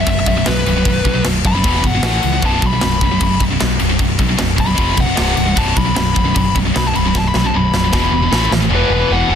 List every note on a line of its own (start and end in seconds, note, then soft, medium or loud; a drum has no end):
0.01 0.09 E5 loud
0.06 0.22 F#1 medium
0.06 0.25 B1 medium
0.06 0.25 F#2 medium
0.06 0.18 E5 medium
0.06 kick loud
0.06 crash medium
0.20 0.27 E5 medium
0.26 0.42 B0 medium
0.26 0.36 B1 medium
0.26 0.36 F#2 medium
0.26 0.37 E5 loud
0.26 kick medium
0.26 crash medium
0.37 0.46 B1 medium
0.37 0.47 F#2 medium
0.37 0.47 E5 medium
0.46 0.64 B1 medium
0.46 0.62 B1 medium
0.46 0.65 F#2 medium
0.46 1.23 B4 loud
0.46 snare loud
0.46 crash medium
0.66 0.82 B0 medium
0.66 0.76 B1 medium
0.66 0.75 F#2 medium
0.66 crash medium
0.76 0.85 B1 medium
0.76 0.85 F#2 medium
0.85 1.01 B0 loud
0.85 1.04 B1 medium
0.85 1.04 F#2 medium
0.85 kick loud
0.85 crash medium
1.05 1.20 B1 loud
1.05 1.13 B1 medium
1.05 1.13 F#2 medium
1.05 kick medium
1.05 crash medium
1.14 1.23 B1 medium
1.14 1.24 F#2 medium
1.25 1.40 B0 medium
1.25 1.42 B1 medium
1.25 1.43 F#2 medium
1.25 snare loud
1.25 crash medium
1.45 1.60 F#1 medium
1.45 1.54 B1 medium
1.45 1.54 F#2 medium
1.45 1.84 B5 medium
1.45 kick medium
1.45 crash medium
1.55 1.64 B1 medium
1.55 1.64 F#2 medium
1.64 1.79 E1 medium
1.64 1.83 E2 medium
1.64 1.82 B2 medium
1.64 1.84 E3 medium
1.64 kick loud
1.64 crash medium
1.83 1.99 G1 medium
1.83 1.93 E2 medium
1.83 1.93 B2 medium
1.83 2.43 F#5 medium
1.83 kick medium
1.83 crash medium
1.94 2.03 E2 medium
1.94 2.04 B2 medium
2.03 2.18 A1 medium
2.03 2.22 A2 medium
2.03 2.22 E3 medium
2.03 2.22 A3 medium
2.03 snare loud
2.03 crash medium
2.23 2.39 C#2 medium
2.23 2.32 A2 medium
2.23 2.32 E3 medium
2.23 crash medium
2.33 2.42 A2 medium
2.33 2.43 E3 medium
2.42 2.58 B0 loud
2.42 2.61 B1 medium
2.42 2.62 F#2 loud
2.42 2.62 B2 medium
2.42 2.66 A5 medium
2.42 kick loud
2.42 crash medium
2.62 2.78 B1 medium
2.62 2.71 B1 medium
2.62 2.71 F#2 medium
2.62 3.21 B5 medium
2.62 kick medium
2.62 crash medium
2.73 2.80 B1 medium
2.73 2.81 F#2 medium
2.81 2.98 B0 medium
2.81 3.00 B1 medium
2.81 3.00 F#2 medium
2.81 snare loud
2.81 crash medium
3.01 3.17 B0 medium
3.01 3.10 B1 medium
3.01 3.10 F#2 medium
3.01 kick medium
3.01 crash medium
3.11 3.19 B1 medium
3.11 3.19 F#2 medium
3.20 3.36 F#1 medium
3.20 3.38 B1 medium
3.20 3.39 F#2 medium
3.20 3.41 B5 loud
3.20 kick loud
3.20 crash medium
3.40 3.56 B0 medium
3.40 3.50 B1 medium
3.40 3.49 F#2 medium
3.40 kick medium
3.40 crash medium
3.50 3.58 B1 medium
3.50 3.58 F#2 medium
3.59 3.78 B1 medium
3.59 3.77 B1 loud
3.59 3.78 F#2 medium
3.59 snare loud
3.59 crash medium
3.79 3.95 B0 medium
3.79 3.89 B1 medium
3.79 3.88 F#2 medium
3.79 crash medium
3.89 3.98 B1 medium
3.89 3.98 F#2 medium
3.99 4.15 B0 medium
3.99 4.17 B1 medium
3.99 4.17 F#2 medium
3.99 kick loud
3.99 crash medium
4.19 4.34 B1 medium
4.19 4.28 B1 medium
4.19 4.27 F#2 medium
4.19 kick medium
4.19 crash medium
4.29 4.36 B1 medium
4.29 4.37 F#2 medium
4.38 4.55 B0 medium
4.38 4.56 B1 medium
4.38 4.55 F#2 medium
4.38 snare loud
4.38 crash medium
4.57 4.73 B0 medium
4.57 4.65 B1 medium
4.57 4.65 F#2 medium
4.57 4.98 B5 loud
4.57 kick medium
4.57 crash medium
4.66 4.75 B1 medium
4.66 4.76 F#2 medium
4.75 4.93 F1 medium
4.75 4.95 F2 medium
4.75 4.95 C3 medium
4.75 4.96 F3 medium
4.75 kick loud
4.75 crash medium
4.96 5.13 B0 medium
4.96 5.05 F2 medium
4.96 5.05 C3 medium
4.96 kick medium
4.96 crash medium
5.01 5.57 F#5 loud
5.07 5.15 F2 medium
5.07 5.15 C3 medium
5.15 5.34 C1 loud
5.15 5.35 C2 medium
5.15 5.35 G2 loud
5.15 5.36 C3 loud
5.15 snare loud
5.15 crash medium
5.36 5.53 C1 medium
5.36 5.45 C2 medium
5.36 5.44 G2 medium
5.36 crash medium
5.46 5.55 C2 medium
5.46 5.56 G2 medium
5.56 5.72 B0 loud
5.56 5.74 B1 medium
5.56 5.74 F#2 loud
5.56 5.76 B2 loud
5.56 5.77 A5 medium
5.56 kick loud
5.56 crash medium
5.75 5.84 B1 medium
5.75 5.92 B1 loud
5.75 5.84 F#2 medium
5.75 6.35 B5 loud
5.75 kick medium
5.75 crash medium
5.85 5.94 B1 medium
5.85 5.94 F#2 medium
5.95 6.12 B0 medium
5.95 6.13 B1 medium
5.95 6.13 F#2 loud
5.95 snare loud
5.95 crash medium
6.15 6.31 B0 medium
6.15 6.24 B1 medium
6.15 6.24 F#2 medium
6.15 kick medium
6.15 crash medium
6.25 6.34 B1 medium
6.25 6.34 F#2 medium
6.35 6.51 F#1 medium
6.35 6.53 B1 medium
6.35 6.53 F#2 medium
6.35 6.55 B5 loud
6.35 kick loud
6.35 crash medium
6.55 6.70 B0 medium
6.55 6.65 B1 medium
6.55 6.64 F#2 medium
6.55 kick medium
6.55 crash medium
6.65 6.73 B1 medium
6.65 6.74 F#2 medium
6.74 6.92 B1 medium
6.74 6.91 B1 loud
6.74 6.93 F#2 medium
6.74 6.86 B5 loud
6.74 snare loud
6.74 crash medium
6.88 6.96 A5 medium
6.94 7.11 B0 medium
6.94 7.04 B1 medium
6.94 7.04 F#2 medium
6.94 7.05 B5 loud
6.94 crash medium
7.05 7.14 B1 medium
7.05 7.15 F#2 medium
7.05 7.16 B5 loud
7.15 7.30 B0 loud
7.15 7.32 B1 medium
7.15 7.33 F#2 medium
7.15 7.27 A5 loud
7.15 kick loud
7.15 snare medium
7.27 7.35 B5 loud
7.34 7.43 B1 medium
7.34 7.50 B1 loud
7.34 7.43 F#2 medium
7.34 7.45 B5 medium
7.34 snare medium
7.44 7.53 B1 medium
7.44 7.54 F#2 medium
7.44 7.55 A5 medium
7.54 7.69 B0 medium
7.54 7.71 B1 medium
7.54 7.72 F#2 medium
7.54 7.74 B5 loud
7.74 7.89 B0 medium
7.74 7.83 B1 medium
7.74 7.83 F#2 medium
7.74 8.51 B5 loud
7.74 snare medium
7.84 7.92 B1 medium
7.84 7.93 F#2 medium
7.92 8.08 E1 loud
7.92 8.11 E2 medium
7.92 8.11 B2 loud
7.92 8.12 E3 loud
7.92 kick loud
7.92 snare medium
8.11 8.27 E1 medium
8.11 8.22 E2 medium
8.11 8.21 B2 loud
8.23 8.31 E2 medium
8.23 8.32 B2 medium
8.31 8.47 A1 loud
8.31 8.50 A2 medium
8.31 8.50 E3 medium
8.31 8.51 A3 loud
8.31 snare loud
8.51 8.67 A1 loud
8.51 8.60 A2 medium
8.51 8.59 E3 medium
8.51 snare medium
8.61 8.70 A2 medium
8.61 8.71 E3 loud
8.70 8.82 E1 loud
8.70 9.31 E2 medium
8.70 9.29 B2 loud
8.70 9.28 E3 loud
8.75 9.14 B4 medium
8.90 9.02 E1 medium
9.10 9.22 E1 medium
9.10 9.35 F#5 loud
9.28 9.35 E1 medium
9.28 9.35 E2 medium
9.28 9.35 B2 medium
9.28 9.35 E3 medium